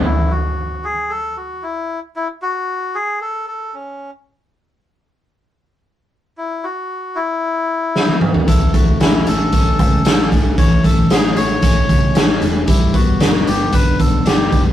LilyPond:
<<
  \new Staff \with { instrumentName = "Melodica" } { \time 4/4 \key a \major \tempo 4 = 114 e'8 fis'4 gis'8 a'8 fis'8 e'8. r16 | e'8 fis'4 gis'8 a'8 a'8 cis'8. r16 | r1 | e'8 fis'4 e'2 r8 |
a'8 fis'8 e'8 a'2 r8 | cis''8 a'8 gis'8 cis''2 r8 | e'8 fis'4 g'8 b'8 a'8 g'8. r16 | }
  \new Staff \with { instrumentName = "Clean electric guitar" } { \time 4/4 \key a \major r1 | r1 | r1 | r1 |
e8 a8 cis'8 a8 cis'8 a8 cis'8 a8 | e8 a8 cis'8 a8 cis'8 a8 cis'8 a8 | g8 b8 d'8 b8 d'8 b8 d'8 b8 | }
  \new Staff \with { instrumentName = "Picked electric bass" } { \clef bass \time 4/4 \key a \major r1 | r1 | r1 | r1 |
a,,8 r16 a,,16 a,,8 a,,8 a,,8 cis,8 a,,8 gis,,8 | a,,8 r16 a,,16 a,,8 a,,8 a,,8 cis,8 a,,8 e,,8 | g,,8 r16 g,,16 g,,8 g,,8 g,,8 b,,8 g,,8 fis,,8 | }
  \new DrumStaff \with { instrumentName = "Drums" } \drummode { \time 4/4 r4 r4 r4 r4 | r4 r4 r4 r4 | r4 r4 r4 r4 | r4 r4 r4 sn16 tommh16 toml16 tomfh16 |
<hh bd>8 <hh bd>8 <hh sn>8 hh8 <hh bd>8 <hh bd>8 <hh sn>8 <hh bd>8 | <hh bd>8 <hh bd>8 <hh sn>8 hh8 <hh bd>8 <hh bd>8 <hh sn>8 hh8 | <hh bd>8 <hh bd>8 <hh sn>8 hh8 <hh bd>8 <hh bd>8 <hh sn>8 <hh bd>8 | }
>>